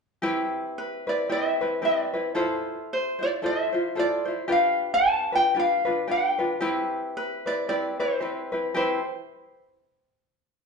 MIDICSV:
0, 0, Header, 1, 3, 480
1, 0, Start_track
1, 0, Key_signature, 0, "major"
1, 0, Tempo, 532860
1, 202, Time_signature, 4, 2, 24, 8
1, 9600, End_track
2, 0, Start_track
2, 0, Title_t, "Ukulele"
2, 0, Program_c, 0, 24
2, 703, Note_on_c, 0, 71, 76
2, 979, Note_off_c, 0, 71, 0
2, 983, Note_on_c, 0, 74, 78
2, 1180, Note_off_c, 0, 74, 0
2, 1189, Note_on_c, 0, 76, 86
2, 1663, Note_off_c, 0, 76, 0
2, 1667, Note_on_c, 0, 74, 77
2, 2008, Note_off_c, 0, 74, 0
2, 2640, Note_on_c, 0, 72, 76
2, 2902, Note_off_c, 0, 72, 0
2, 2906, Note_on_c, 0, 74, 71
2, 2957, Note_off_c, 0, 74, 0
2, 3115, Note_on_c, 0, 76, 80
2, 3592, Note_off_c, 0, 76, 0
2, 3598, Note_on_c, 0, 74, 85
2, 3932, Note_off_c, 0, 74, 0
2, 4073, Note_on_c, 0, 77, 79
2, 4445, Note_off_c, 0, 77, 0
2, 4448, Note_on_c, 0, 81, 94
2, 4820, Note_off_c, 0, 81, 0
2, 4823, Note_on_c, 0, 79, 84
2, 5018, Note_off_c, 0, 79, 0
2, 5040, Note_on_c, 0, 77, 88
2, 5503, Note_off_c, 0, 77, 0
2, 5507, Note_on_c, 0, 79, 81
2, 5845, Note_off_c, 0, 79, 0
2, 6457, Note_on_c, 0, 71, 77
2, 6727, Note_off_c, 0, 71, 0
2, 6731, Note_on_c, 0, 74, 92
2, 6916, Note_off_c, 0, 74, 0
2, 6927, Note_on_c, 0, 74, 89
2, 7180, Note_off_c, 0, 74, 0
2, 7208, Note_on_c, 0, 72, 71
2, 7648, Note_off_c, 0, 72, 0
2, 7897, Note_on_c, 0, 72, 77
2, 8146, Note_off_c, 0, 72, 0
2, 9600, End_track
3, 0, Start_track
3, 0, Title_t, "Ukulele"
3, 0, Program_c, 1, 24
3, 198, Note_on_c, 1, 67, 75
3, 204, Note_on_c, 1, 60, 76
3, 208, Note_on_c, 1, 64, 96
3, 209, Note_on_c, 1, 71, 98
3, 953, Note_off_c, 1, 71, 0
3, 958, Note_off_c, 1, 67, 0
3, 963, Note_on_c, 1, 71, 47
3, 968, Note_off_c, 1, 64, 0
3, 972, Note_on_c, 1, 64, 40
3, 981, Note_off_c, 1, 60, 0
3, 984, Note_on_c, 1, 60, 32
3, 1155, Note_off_c, 1, 60, 0
3, 1161, Note_off_c, 1, 64, 0
3, 1164, Note_off_c, 1, 71, 0
3, 1165, Note_on_c, 1, 67, 52
3, 1166, Note_on_c, 1, 60, 59
3, 1172, Note_on_c, 1, 64, 60
3, 1179, Note_on_c, 1, 71, 53
3, 1439, Note_off_c, 1, 71, 0
3, 1442, Note_off_c, 1, 60, 0
3, 1442, Note_off_c, 1, 67, 0
3, 1445, Note_off_c, 1, 64, 0
3, 1450, Note_on_c, 1, 71, 54
3, 1458, Note_on_c, 1, 64, 45
3, 1463, Note_on_c, 1, 60, 42
3, 1633, Note_off_c, 1, 60, 0
3, 1637, Note_off_c, 1, 64, 0
3, 1637, Note_on_c, 1, 67, 55
3, 1642, Note_off_c, 1, 71, 0
3, 1644, Note_on_c, 1, 60, 54
3, 1648, Note_on_c, 1, 64, 55
3, 1653, Note_on_c, 1, 71, 61
3, 1912, Note_off_c, 1, 71, 0
3, 1918, Note_off_c, 1, 67, 0
3, 1921, Note_off_c, 1, 60, 0
3, 1921, Note_off_c, 1, 64, 0
3, 1923, Note_on_c, 1, 71, 46
3, 1932, Note_on_c, 1, 64, 45
3, 1943, Note_on_c, 1, 60, 36
3, 2108, Note_off_c, 1, 64, 0
3, 2110, Note_off_c, 1, 71, 0
3, 2114, Note_on_c, 1, 69, 79
3, 2118, Note_off_c, 1, 60, 0
3, 2119, Note_on_c, 1, 64, 91
3, 2122, Note_on_c, 1, 65, 86
3, 2130, Note_on_c, 1, 72, 85
3, 2860, Note_off_c, 1, 72, 0
3, 2871, Note_on_c, 1, 72, 50
3, 2876, Note_off_c, 1, 69, 0
3, 2878, Note_off_c, 1, 64, 0
3, 2882, Note_off_c, 1, 65, 0
3, 2886, Note_on_c, 1, 65, 37
3, 2894, Note_on_c, 1, 64, 35
3, 3077, Note_off_c, 1, 64, 0
3, 3077, Note_off_c, 1, 72, 0
3, 3082, Note_on_c, 1, 69, 50
3, 3083, Note_off_c, 1, 65, 0
3, 3087, Note_on_c, 1, 64, 56
3, 3094, Note_on_c, 1, 65, 56
3, 3097, Note_on_c, 1, 72, 60
3, 3344, Note_off_c, 1, 72, 0
3, 3355, Note_on_c, 1, 72, 54
3, 3358, Note_off_c, 1, 65, 0
3, 3359, Note_off_c, 1, 69, 0
3, 3362, Note_off_c, 1, 64, 0
3, 3369, Note_on_c, 1, 65, 54
3, 3376, Note_on_c, 1, 64, 39
3, 3558, Note_off_c, 1, 64, 0
3, 3559, Note_off_c, 1, 72, 0
3, 3562, Note_on_c, 1, 69, 53
3, 3566, Note_off_c, 1, 65, 0
3, 3569, Note_on_c, 1, 64, 52
3, 3576, Note_on_c, 1, 65, 64
3, 3577, Note_on_c, 1, 72, 57
3, 3821, Note_off_c, 1, 72, 0
3, 3832, Note_on_c, 1, 72, 59
3, 3834, Note_off_c, 1, 65, 0
3, 3839, Note_off_c, 1, 69, 0
3, 3842, Note_off_c, 1, 64, 0
3, 3844, Note_on_c, 1, 65, 44
3, 3852, Note_on_c, 1, 64, 43
3, 4030, Note_off_c, 1, 72, 0
3, 4033, Note_off_c, 1, 65, 0
3, 4034, Note_on_c, 1, 67, 76
3, 4040, Note_off_c, 1, 64, 0
3, 4040, Note_on_c, 1, 62, 74
3, 4043, Note_on_c, 1, 65, 73
3, 4046, Note_on_c, 1, 71, 82
3, 4791, Note_off_c, 1, 71, 0
3, 4794, Note_off_c, 1, 65, 0
3, 4794, Note_on_c, 1, 71, 47
3, 4797, Note_off_c, 1, 62, 0
3, 4805, Note_on_c, 1, 65, 39
3, 4812, Note_on_c, 1, 62, 36
3, 4832, Note_off_c, 1, 67, 0
3, 4994, Note_off_c, 1, 62, 0
3, 4994, Note_on_c, 1, 67, 49
3, 4997, Note_off_c, 1, 71, 0
3, 4999, Note_off_c, 1, 65, 0
3, 5005, Note_on_c, 1, 62, 53
3, 5010, Note_on_c, 1, 65, 58
3, 5015, Note_on_c, 1, 71, 65
3, 5258, Note_off_c, 1, 71, 0
3, 5269, Note_on_c, 1, 71, 56
3, 5270, Note_off_c, 1, 65, 0
3, 5274, Note_off_c, 1, 67, 0
3, 5279, Note_off_c, 1, 62, 0
3, 5280, Note_on_c, 1, 65, 48
3, 5289, Note_on_c, 1, 62, 40
3, 5469, Note_off_c, 1, 62, 0
3, 5472, Note_on_c, 1, 67, 52
3, 5473, Note_off_c, 1, 65, 0
3, 5474, Note_off_c, 1, 71, 0
3, 5480, Note_on_c, 1, 62, 53
3, 5484, Note_on_c, 1, 65, 54
3, 5490, Note_on_c, 1, 71, 57
3, 5741, Note_off_c, 1, 71, 0
3, 5750, Note_off_c, 1, 65, 0
3, 5752, Note_off_c, 1, 67, 0
3, 5752, Note_on_c, 1, 71, 46
3, 5756, Note_off_c, 1, 62, 0
3, 5760, Note_on_c, 1, 65, 49
3, 5767, Note_on_c, 1, 62, 40
3, 5950, Note_on_c, 1, 67, 86
3, 5952, Note_off_c, 1, 62, 0
3, 5953, Note_off_c, 1, 71, 0
3, 5956, Note_on_c, 1, 60, 79
3, 5957, Note_off_c, 1, 65, 0
3, 5960, Note_on_c, 1, 64, 88
3, 5964, Note_on_c, 1, 71, 102
3, 6716, Note_off_c, 1, 71, 0
3, 6719, Note_on_c, 1, 71, 50
3, 6725, Note_off_c, 1, 64, 0
3, 6729, Note_on_c, 1, 64, 46
3, 6733, Note_off_c, 1, 60, 0
3, 6737, Note_on_c, 1, 60, 34
3, 6916, Note_off_c, 1, 60, 0
3, 6919, Note_off_c, 1, 67, 0
3, 6919, Note_off_c, 1, 71, 0
3, 6922, Note_on_c, 1, 67, 45
3, 6924, Note_off_c, 1, 64, 0
3, 6927, Note_on_c, 1, 60, 52
3, 6934, Note_on_c, 1, 64, 57
3, 6941, Note_on_c, 1, 71, 56
3, 7191, Note_off_c, 1, 71, 0
3, 7197, Note_off_c, 1, 67, 0
3, 7198, Note_off_c, 1, 64, 0
3, 7199, Note_off_c, 1, 60, 0
3, 7202, Note_on_c, 1, 71, 58
3, 7209, Note_on_c, 1, 64, 43
3, 7217, Note_on_c, 1, 60, 40
3, 7384, Note_off_c, 1, 60, 0
3, 7390, Note_on_c, 1, 67, 44
3, 7391, Note_off_c, 1, 64, 0
3, 7395, Note_on_c, 1, 60, 45
3, 7397, Note_off_c, 1, 71, 0
3, 7402, Note_on_c, 1, 64, 53
3, 7407, Note_on_c, 1, 71, 65
3, 7664, Note_off_c, 1, 71, 0
3, 7671, Note_off_c, 1, 67, 0
3, 7672, Note_off_c, 1, 64, 0
3, 7674, Note_off_c, 1, 60, 0
3, 7675, Note_on_c, 1, 71, 50
3, 7683, Note_on_c, 1, 64, 39
3, 7689, Note_on_c, 1, 60, 40
3, 7875, Note_off_c, 1, 60, 0
3, 7877, Note_off_c, 1, 71, 0
3, 7877, Note_on_c, 1, 67, 84
3, 7881, Note_off_c, 1, 64, 0
3, 7886, Note_on_c, 1, 60, 70
3, 7892, Note_on_c, 1, 64, 80
3, 7897, Note_on_c, 1, 71, 77
3, 8099, Note_off_c, 1, 67, 0
3, 8104, Note_off_c, 1, 60, 0
3, 8107, Note_off_c, 1, 64, 0
3, 8109, Note_off_c, 1, 71, 0
3, 9600, End_track
0, 0, End_of_file